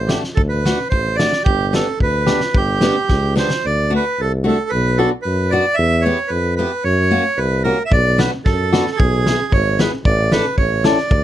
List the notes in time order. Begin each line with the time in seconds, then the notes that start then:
Already playing: A1
0.07 A3 D4 F#4 G4, snare
0.24 snare
0.35 D2 A4, kick
0.49 B4
0.65 A3 D4 F#4, snare
0.89 A1 C5, kick
1.16 A3 D4 D5, snare
1.20 F#4
1.33 snare
1.44 G1 G4, kick
1.73 B3 D4 G4 A4, snare
2.00 D2 B4, kick
2.26 B3 D4 G4, snare
2.40 snare
2.54 G1 G4, kick
2.81 B3 D4 G4, snare
3.09 C#2, kick, snare
3.35 B3 D4 G4 C5, snare
3.50 snare
3.65 D2 D5
3.90 A3 D4 F#4
3.96 B4
4.19 C2 A4
4.44 A3 D4 F#4 A4
4.70 B1 B4
4.98 B3 D4 F#4 A4
5.22 F#2 B4
5.51 B3 D4 F#4 D5
5.75 E2 E5
6.02 B3 C#5
6.06 E4 G4
6.28 F2 B4
6.56 B3 E4 G4 B4
6.84 F#2 C#5
7.11 A#3 C#4 F#4
7.37 C2 B4
7.64 A#3 C#4 F#4 A#4
7.85 E5
7.92 B1 D5, kick
8.18 B3 D4 F#4 B4, snare
8.45 F#2 A4, kick, snare
8.73 B3 D4 F#4, snare
8.87 snare
8.92 A4
8.97 B1 G#4, kick
9.26 B3 E4 G#4, snare
9.52 G#1 C#5, kick
9.79 B3 E4 G#4 B4, snare
10.05 A1 D5, kick
10.32 D4 E4 A4 B4, snare
10.57 A1 C#5, kick
10.84 C#4 E4 A4 D5, snare
10.98 snare
11.11 D2, kick